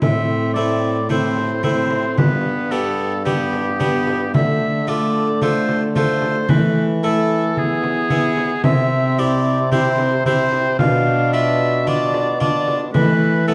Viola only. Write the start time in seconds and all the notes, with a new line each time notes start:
0.02 C4
1.10 C4
1.64 C4
2.18 B3
3.26 B3
4.34 A3
4.89 A3
6.50 A3
7.03 A3
7.57 B3
8.64 C4
9.72 C4
10.26 C4
10.80 D4
11.86 D4
12.40 D4
12.94 A3
13.47 A3